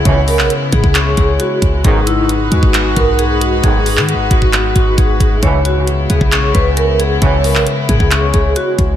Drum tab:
HH |x-o-x-x-x-x-x-x-|x-x-x-x-x-x-x-x-|x-o-x-x-x-x-x-x-|x-x-x-x-x-x-x-x-|
CP |---x----x-------|--------x-------|---x----x-------|--------x-------|
BD |o-----oo--o---o-|o------o--o-----|o-----oo--o-o-o-|o------o--o-----|

HH |x-o-x-x-x-x-x-x-|
CP |---x----x-------|
BD |o-----oo--o---o-|